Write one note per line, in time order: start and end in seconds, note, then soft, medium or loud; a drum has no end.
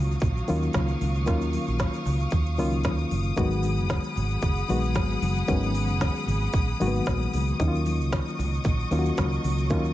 0.00 0.15 C#2 loud
0.00 0.48 D#3 medium
0.00 0.48 F#3 medium
0.00 3.34 F#3 medium
0.00 0.49 A#3 medium
0.00 0.49 C#4 medium
0.00 0.12 F4 medium
0.00 3.34 F5 medium
0.00 3.34 C#6 medium
0.00 9.94 D#6 medium
0.11 shaker medium
0.20 0.40 A#1 loud
0.20 kick loud
0.20 closed hi-hat medium
0.20 muted conga soft
0.20 low conga medium
0.20 shaker medium
0.37 shaker soft
0.48 0.68 D#2 medium
0.48 1.17 D#3 medium
0.48 1.17 F#3 medium
0.48 1.18 A#3 medium
0.48 1.18 C#4 medium
0.48 1.18 F4 medium
0.48 open hi-hat medium
0.48 muted conga soft
0.48 shaker medium
0.62 shaker soft
0.73 0.93 C#2 loud
0.73 kick medium
0.73 snare loud
0.73 closed hi-hat medium
0.73 high conga medium
0.73 shaker medium
0.88 shaker soft
1.01 1.28 C#2 loud
1.01 open hi-hat medium
1.01 high conga medium
1.15 shaker medium
1.26 1.56 D#2 loud
1.26 2.19 D#3 medium
1.26 2.19 F#3 medium
1.26 2.19 A#3 medium
1.26 2.19 C#4 medium
1.26 2.19 F4 medium
1.26 kick loud
1.26 closed hi-hat medium
1.26 muted conga soft
1.26 shaker medium
1.41 shaker medium
1.53 open hi-hat medium
1.53 muted conga soft
1.53 shaker medium
1.67 1.86 A#1 medium
1.67 shaker medium
1.79 kick medium
1.79 snare loud
1.79 closed hi-hat medium
1.79 high conga medium
1.79 shaker medium
1.93 shaker medium
2.06 2.25 C#2 loud
2.06 open hi-hat medium
2.06 low conga medium
2.06 shaker medium
2.20 shaker medium
2.31 2.59 D#2 medium
2.31 kick loud
2.31 closed hi-hat medium
2.31 muted conga soft
2.31 shaker medium
2.46 shaker soft
2.57 2.85 C#2 medium
2.57 3.27 D#3 medium
2.57 3.28 F#3 medium
2.57 3.28 A#3 medium
2.57 3.28 C#4 medium
2.57 3.28 F4 loud
2.57 open hi-hat medium
2.57 muted conga soft
2.57 low conga medium
2.57 shaker medium
2.72 shaker soft
2.84 3.04 D#2 medium
2.84 kick medium
2.84 snare medium
2.84 closed hi-hat medium
2.84 high conga medium
2.84 shaker medium
2.98 shaker soft
3.11 3.30 F#1 medium
3.11 open hi-hat medium
3.11 high conga medium
3.23 shaker medium
3.36 3.79 G#1 loud
3.36 4.29 D#3 medium
3.36 4.29 F#3 medium
3.36 4.29 G#3 medium
3.36 4.30 B3 medium
3.36 4.30 F#4 loud
3.36 7.55 G#4 medium
3.36 7.56 F#5 medium
3.36 7.56 B5 medium
3.36 kick loud
3.36 closed hi-hat medium
3.36 muted conga soft
3.36 shaker medium
3.51 shaker medium
3.63 open hi-hat medium
3.63 muted conga soft
3.63 shaker medium
3.77 3.97 F#1 medium
3.77 shaker medium
3.89 kick loud
3.89 snare loud
3.89 closed hi-hat medium
3.89 high conga medium
3.89 shaker medium
4.04 shaker medium
4.16 4.36 G#1 loud
4.16 open hi-hat medium
4.16 low conga medium
4.16 shaker medium
4.30 shaker medium
4.42 4.61 F#1 medium
4.42 kick loud
4.42 closed hi-hat medium
4.42 muted conga medium
4.42 low conga medium
4.42 shaker medium
4.56 shaker soft
4.68 4.96 A#1 medium
4.68 5.38 D#3 medium
4.68 5.38 F#3 medium
4.68 5.39 G#3 medium
4.68 5.39 B3 medium
4.68 5.39 F#4 medium
4.68 open hi-hat medium
4.68 muted conga soft
4.68 shaker medium
4.83 shaker soft
4.95 5.14 G#1 loud
4.95 kick loud
4.95 snare medium
4.95 closed hi-hat medium
4.95 high conga medium
4.95 shaker medium
5.10 shaker soft
5.22 5.41 F#1 loud
5.22 open hi-hat medium
5.22 high conga medium
5.36 shaker medium
5.48 5.89 G#1 loud
5.48 6.40 D#3 medium
5.48 6.40 F#3 medium
5.48 6.40 G#3 medium
5.48 6.40 B3 medium
5.48 6.40 C#4 medium
5.48 kick loud
5.48 closed hi-hat medium
5.48 muted conga soft
5.48 shaker medium
5.63 shaker medium
5.74 open hi-hat medium
5.74 muted conga medium
5.74 shaker medium
5.88 6.07 F#1 medium
5.88 shaker medium
6.01 kick loud
6.01 snare loud
6.01 closed hi-hat medium
6.01 high conga medium
6.01 shaker medium
6.15 shaker medium
6.26 6.46 G#1 loud
6.26 open hi-hat medium
6.26 low conga medium
6.26 shaker medium
6.42 shaker soft
6.53 6.72 A#1 medium
6.53 kick loud
6.53 closed hi-hat medium
6.53 muted conga soft
6.53 shaker medium
6.68 shaker soft
6.80 6.99 G#1 medium
6.80 7.49 D#3 medium
6.80 7.49 F#3 medium
6.80 7.50 G#3 medium
6.80 6.88 A#3 medium
6.80 7.50 F#4 loud
6.80 open hi-hat medium
6.80 muted conga medium
6.80 low conga medium
6.80 shaker soft
6.87 7.53 B3 medium
6.95 shaker medium
7.06 7.25 A#1 medium
7.06 kick medium
7.06 snare loud
7.06 closed hi-hat medium
7.06 high conga medium
7.06 shaker medium
7.22 shaker soft
7.33 7.52 C#2 medium
7.33 open hi-hat medium
7.33 high conga medium
7.33 shaker medium
7.48 shaker medium
7.60 8.01 D#2 loud
7.60 8.52 D#3 medium
7.60 8.52 F#3 medium
7.60 9.94 F#3 medium
7.60 8.52 A#3 medium
7.60 8.52 C#4 medium
7.60 7.67 E4 medium
7.60 9.94 D#5 medium
7.60 9.94 C#6 medium
7.60 kick loud
7.60 closed hi-hat medium
7.60 muted conga soft
7.60 shaker medium
7.68 8.55 F4 medium
7.75 shaker medium
7.86 open hi-hat medium
7.86 muted conga medium
7.86 shaker medium
8.01 8.19 C#2 medium
8.01 shaker medium
8.12 kick medium
8.12 snare loud
8.12 closed hi-hat medium
8.12 high conga medium
8.12 shaker medium
8.27 shaker medium
8.39 8.57 C#2 loud
8.39 open hi-hat medium
8.39 low conga medium
8.39 shaker medium
8.54 shaker medium
8.64 8.83 A#1 medium
8.64 kick loud
8.64 closed hi-hat medium
8.64 muted conga soft
8.64 low conga medium
8.64 shaker medium
8.80 shaker soft
8.91 9.10 D#2 medium
8.91 9.60 D#3 medium
8.91 9.60 F#3 medium
8.91 9.60 A#3 medium
8.91 9.60 C#4 medium
8.91 8.99 F4 medium
8.91 open hi-hat medium
8.91 muted conga medium
8.91 shaker medium
8.99 9.64 F#4 medium
9.05 shaker medium
9.17 9.36 C#2 loud
9.17 kick loud
9.17 snare medium
9.17 closed hi-hat medium
9.17 high conga medium
9.17 shaker medium
9.32 shaker soft
9.44 9.70 C#2 loud
9.44 open hi-hat medium
9.44 high conga medium
9.57 shaker medium
9.70 9.94 D#2 medium
9.70 9.94 D#3 medium
9.70 9.94 F#3 medium
9.70 9.94 A#3 medium
9.70 9.94 C#4 medium
9.70 9.94 F4 medium
9.70 kick loud
9.70 closed hi-hat medium
9.70 shaker medium
9.85 shaker medium